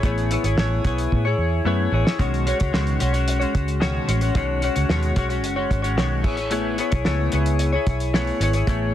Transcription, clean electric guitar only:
0.04 A3 B3 E4 G#4 C#5
0.31 B3 E4 G#4 C#5
0.45 E4 G#4 C#5
0.58 A3 B3 E4 G#4 C#5
0.84 B3 E4 G#4 C#5
1.25 E4 G#4 C#5
1.65 A3 B3 E4 G#4 C#5
1.91 B3 E4 G#4 C#5
2.05 E4 G#4 C#5
2.19 B2 D#3 G#3 C#4 F#4 C#5
2.46 G#3 C#4 F#4 C#5
2.59 G#3 C#4 F#4 C#5
2.72 B2 D#3 G#3 C#4 F#4 C#5
2.99 G#3 C#4 F#4 C#5
3.13 G#3 C#4 F#4 C#5
3.39 G#3 C#4 F#4 C#5
3.80 B2 D#3 G#3 C#4 F#4 C#5
4.08 G#3 C#4 F#4 C#5
4.22 G#3 C#4 F#4 C#5
4.35 B2 D#3 G#3 C#4 F#4 C#5
4.62 G#3 C#4 F#4 C#5
4.75 G#3 C#4 F#4 C#5
4.89 B2 D#3 G#3 C#4 F#4 C#5
5.16 G#3 C#4 F#4 C#5
5.29 G#3 C#4 F#4 C#5
5.56 G#3 C#4 F#4 C#5
5.82 G#3 C#4 F#4 C#5
5.97 B2 D#3 G#3 C#4 F#4 C#5
6.23 B3 E4 G#4 C#5
6.37 E4 G#4 C#5
6.50 A3 B3 E4 G#4 C#5
6.78 B3 E4 G#4 C#5
6.91 E4 G#4 C#5
7.05 A3 B3 E4 G#4 C#5
7.32 B3 E4 G#4 C#5
7.72 E4 G#4 C#5
8.14 A3 B3 E4 G#4 C#5
8.40 B3 E4 G#4 C#5
8.54 E4 G#4 C#5
8.68 A3 B3 E4 G#4 C#5

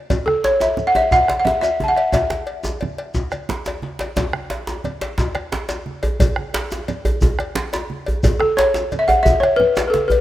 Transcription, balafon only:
0.26 A4
0.45 C#5
0.61 E5
0.87 F#5
0.96 E5
1.12 F#5
1.40 F#5
1.45 E5
1.61 E5
1.84 A5
1.88 F#5
1.96 E5
2.12 E5
8.40 A4
8.57 C#5
8.99 E5
9.08 F#5
9.23 E5
9.40 C#5
9.56 B4
9.88 A4 B4
10.08 B4

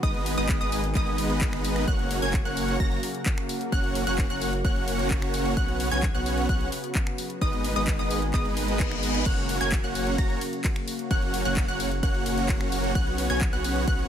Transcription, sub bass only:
0.03 G#1
0.38 G#1
0.61 G#1
0.95 G#1
1.88 F#1
2.22 F#1
2.45 F#1
2.80 F#1
3.72 F#1
4.07 F#1
4.30 F#1
4.65 F#1
5.57 B1
5.91 B1
6.15 B1
6.49 B1
7.42 G#1
7.76 G#1
7.99 G#1
8.34 G#1
9.26 F#1
9.61 F#1
9.84 F#1
10.18 F#1
11.11 F#1
11.45 F#1
11.68 F#1
12.03 F#1
12.95 B1
13.30 B1
13.53 B1
13.88 B1

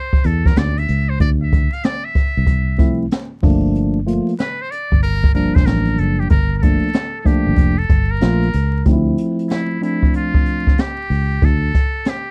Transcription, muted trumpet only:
Already playing: C5
0.26 A4
0.47 A#4
0.58 D5
0.78 E5
1.09 C5
1.21 D5
1.43 E5
1.73 F5
1.85 D5
2.05 E5
4.40 B4
4.62 C5
4.71 D5
5.03 A#4
5.35 A#4
5.55 C5
5.66 A#4
5.99 A4
6.20 G4
6.31 A#4
6.57 A#4
6.62 A4
7.20 A4
7.27 G4
7.78 A4
8.11 A#4
9.51 E4
9.84 E4
10.16 F4
10.80 G4
11.45 A4
12.09 G4

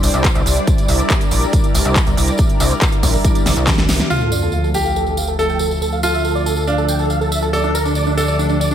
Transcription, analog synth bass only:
0.03 C2
0.14 C2
0.35 C2
0.46 C2
0.89 C2
1.32 A#1
1.75 C2
1.85 C2
2.07 C2
2.17 C2
2.60 C2
3.03 A#1
3.46 C2
3.57 C2
3.78 C2
3.89 C2
4.10 D2

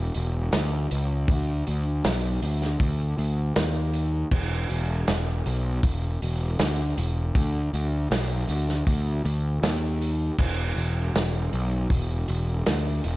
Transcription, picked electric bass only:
Already playing: E1
0.16 E1
0.53 D2
0.91 C#2
1.29 D2
1.68 D2
2.05 B1
2.42 D2
2.80 D2
3.18 D2
3.57 D#2
4.31 E1
4.70 E1
5.08 E1
5.46 B1
5.83 E1
6.22 E1
6.59 D2
6.98 E1
7.35 D2
7.73 D2
8.11 B1
8.49 D2
8.87 D2
9.25 D2
9.63 D#2
10.39 E1
10.76 E1
11.14 E1
11.53 B1
11.90 E1
12.29 E1
12.67 D2
13.05 E1

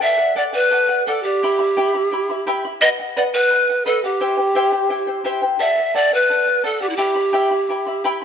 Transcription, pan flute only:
0.03 E5
0.38 D5
0.55 B4
1.07 A4
1.23 G4
2.81 D#5
3.17 D5
3.34 B4
3.86 A4
4.04 G4
5.60 E5
5.96 D5
6.14 B4
6.65 A4
6.82 G4
6.89 E4
6.96 G4

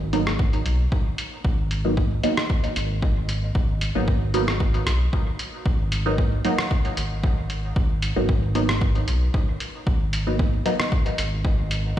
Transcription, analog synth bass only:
Already playing: G#1
0.66 B1
1.45 G#1
2.76 G#1
3.55 G#1
3.95 G#1
4.87 B1
5.66 G#1
6.97 G#1
7.76 G#1
8.16 G#1
9.08 B1
9.87 G#1
11.18 G#1

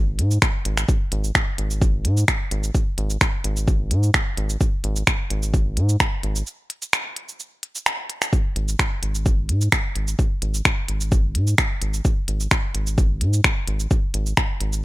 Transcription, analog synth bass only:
Already playing: G#1
0.19 G#2
0.65 G#1
1.12 G#1
1.58 G#1
2.05 G#2
2.51 G#1
2.98 G#1
3.44 G#1
3.91 G#2
4.37 G#1
4.84 G#1
5.30 G#1
5.77 G#2
6.23 G#1
8.56 G#1
9.03 G#1
9.49 G#2
9.96 G#1
10.42 G#1
10.89 G#1
11.35 G#2
11.82 G#1
12.28 G#1
12.75 G#1
13.21 G#2
13.68 G#1
14.14 G#1
14.61 G#1

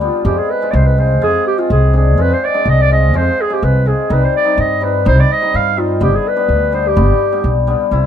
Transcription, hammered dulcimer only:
0.01 G3 B3 D4
0.25 G#3 C4 F4
0.62 G#3 C4 F4
0.98 G#3 C4 F4
1.22 G#3 C4 F4
1.58 G#3 C4 F4
1.93 G#3 C4 D4
2.17 G#3 C4 F4
2.54 G#3 C4 D4
2.91 G#3 C4 F4
3.14 G#3 C4 F4
3.50 G#3 C4 F4
3.86 G#3 C4 F4
4.09 G3 C4 D#4
4.44 G3 C4 D#4
4.81 G3 C4 D#4
5.05 G3 C4 D#4
5.41 G3 C4 D#4
5.77 G3 C4 D#4
6.00 G3 B3 D4
6.36 G3 B3 D4
6.72 G3 B3 D4
6.96 G3 B3 D4
7.32 G3 B3 D4
7.67 G3 B3 D4
7.91 G3 C4 E4

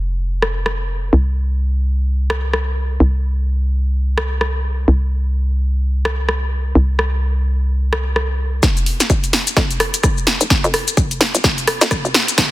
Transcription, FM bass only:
Already playing: F1
1.13 C2
3.00 C2
4.88 C2
6.75 C2
8.63 F1
9.10 G#1
9.57 F2
10.03 F1
10.41 F1
10.64 F2
11.21 F1
11.35 G1
11.81 F2
12.05 G#1
12.38 F1

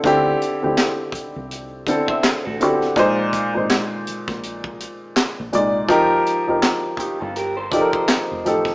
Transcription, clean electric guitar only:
2.08 C5 E5
2.23 A4 C5
2.45 F#4 A4
6.99 D#4 G4
7.20 F4 A4
7.36 G4 A#4
7.57 A4 C5
7.71 A#4 D5
7.92 C5 D#5

